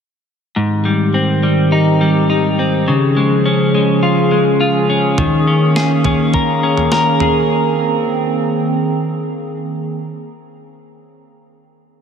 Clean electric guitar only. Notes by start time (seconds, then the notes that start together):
0.56 G#2
0.85 G3
1.14 C4
1.43 G3
1.72 D#4
2.01 G3
2.30 D#4
2.59 C4
2.88 C#3
3.17 G#3
3.46 C#4
3.75 G#3
4.03 F4
4.32 G#3
4.60 F4
4.90 C#4
5.18 D#3
5.47 C#4
5.76 G#4
6.05 C#4
6.34 A#4
6.63 C#4
6.92 A#4
7.21 G#4